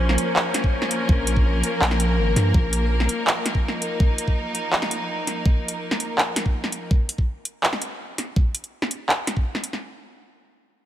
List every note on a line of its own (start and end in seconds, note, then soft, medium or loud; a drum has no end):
0.00 0.17 A#1 medium
0.00 6.91 F3 medium
0.00 6.91 A#3 medium
0.00 3.18 C#4 medium
0.00 6.91 A#4 medium
0.00 1.10 C5 medium
0.09 snare medium
0.18 closed hi-hat medium
0.36 clap loud
0.54 snare medium
0.54 closed hi-hat medium
0.64 kick medium
0.82 snare medium
0.91 closed hi-hat medium
1.09 1.62 A#1 loud
1.09 kick loud
1.27 closed hi-hat medium
1.37 kick medium
1.63 closed hi-hat medium
1.82 2.19 A#1 medium
1.82 clap loud
1.91 snare medium
2.00 closed hi-hat medium
2.18 2.35 G#1 medium
2.36 2.53 G2 medium
2.36 snare soft
2.36 closed hi-hat medium
2.54 3.08 A#1 medium
2.54 kick loud
2.73 closed hi-hat medium
3.00 snare medium
3.07 6.91 D#4 medium
3.07 closed hi-hat medium
3.27 clap loud
3.46 snare medium
3.46 closed hi-hat medium
3.55 kick medium
3.68 snare soft
3.82 closed hi-hat medium
4.00 kick loud
4.18 closed hi-hat medium
4.28 kick medium
4.55 closed hi-hat medium
4.73 clap loud
4.82 snare medium
4.91 closed hi-hat medium
5.27 snare soft
5.27 closed hi-hat medium
5.46 kick loud
5.68 closed hi-hat medium
5.91 snare medium
6.00 closed hi-hat medium
6.18 clap loud
6.36 snare medium
6.36 closed hi-hat medium
6.46 kick medium
6.64 snare soft
6.72 closed hi-hat medium
6.91 kick loud
7.09 closed hi-hat medium
7.18 kick medium
7.45 closed hi-hat medium
7.63 clap loud
7.73 snare medium
7.82 closed hi-hat medium
8.18 snare soft
8.18 closed hi-hat medium
8.36 kick loud
8.55 closed hi-hat medium
8.64 closed hi-hat soft
8.82 snare medium
8.91 closed hi-hat medium
9.09 clap loud
9.27 snare medium
9.27 closed hi-hat medium
9.37 kick medium
9.55 snare soft
9.64 closed hi-hat medium
9.73 snare soft